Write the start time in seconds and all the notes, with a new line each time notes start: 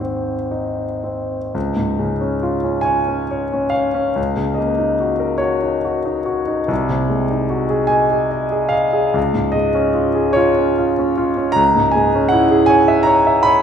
Already playing: G#1 D#2 D#3 C5
0.01 C4
0.51 D#4
1.04 C4
1.55 C#2
1.76 G#2
1.99 C#3
2.21 C#4
2.43 F4
2.64 C#4
2.81 C#5 G#5
3.08 C#4
3.31 C#5
3.53 C#4
3.70 C#5 F5
3.94 C#4
4.16 C#2
4.37 C#3
4.54 A#3 D#5
4.78 D#4
5.00 F#4
5.20 A#4
5.38 F#4 C#5
5.62 D#4
5.85 F#4
6.05 D#4
6.26 F#4
6.48 D#4
6.68 C2
6.89 C3
7.09 G#3
7.31 D#4
7.50 F#4
7.70 G#4
7.87 D#5 G#5
8.11 G#4
8.31 D#5
8.52 G#4
8.69 D#5 F5
8.93 G#4
9.14 C#2
9.34 G#2
9.52 G#3 D#5
9.74 C#4
9.94 F4
10.15 G#4
10.33 F4 C#5
10.59 C#4
10.78 F4
10.99 C#4
11.18 F4
11.37 C#4
11.52 A#5
11.56 C#2
11.76 G#2
11.91 G#3 G#5
12.15 C#4
12.29 E4 F#5
12.51 G#4
12.66 C#5 G#5
12.88 E5
13.03 C#5 A#5
13.27 E5
13.43 C#5 B5